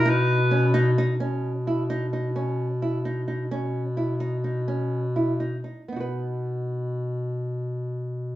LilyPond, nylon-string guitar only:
\new Staff \with { instrumentName = "Nylon-string guitar" } { \time 5/8 \key b \major \tempo 4 = 129 dis'4 cis'8 dis'8 dis'8 | cis'4 e'8 dis'8 dis'8 | cis'4 e'8 dis'8 dis'8 | cis'4 e'8 dis'8 dis'8 |
cis'4 e'8 dis'8 dis'8 | <b dis' fis' b'>2~ <b dis' fis' b'>8~ | <b dis' fis' b'>2~ <b dis' fis' b'>8 | }